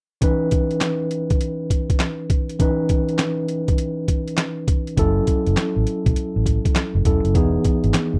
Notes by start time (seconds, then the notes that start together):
0.21 E3 C#4 D#4 B4, kick, closed hi-hat
0.51 kick, closed hi-hat
0.71 closed hi-hat
0.81 snare, clap, closed hi-hat
1.11 closed hi-hat
1.30 kick, closed hi-hat
1.41 closed hi-hat
1.70 kick, closed hi-hat
1.90 kick, closed hi-hat
2.00 snare, clap, closed hi-hat
2.30 kick, closed hi-hat
2.49 closed hi-hat
2.59 E3 C#4 D#4 B4, kick, closed hi-hat
2.89 kick, closed hi-hat
3.09 closed hi-hat
3.18 snare, clap, closed hi-hat
3.48 closed hi-hat
3.68 kick, closed hi-hat
3.78 closed hi-hat
4.08 kick, closed hi-hat
4.28 closed hi-hat
4.37 snare, clap, closed hi-hat
4.68 kick, closed hi-hat
4.87 closed hi-hat
4.97 F#1 F#3 C#4 E4 A4, kick, closed hi-hat
5.27 kick, closed hi-hat
5.47 F#1, closed hi-hat
5.57 snare, clap, closed hi-hat
5.76 A1
5.87 closed hi-hat
6.06 B1, kick, closed hi-hat
6.16 muted fingered electric bass stroke, closed hi-hat
6.36 A1
6.46 kick, closed hi-hat
6.65 kick, closed hi-hat
6.75 snare, clap, closed hi-hat
6.95 F#1
7.05 E1 F#3 C#4 E4 A4, kick, closed hi-hat
7.25 F#1, closed hi-hat
7.34 E1 E3 B3 D#4 G#4, kick, closed hi-hat
7.64 kick, closed hi-hat
7.84 G#1, closed hi-hat
7.94 snare, clap, closed hi-hat
8.13 F#1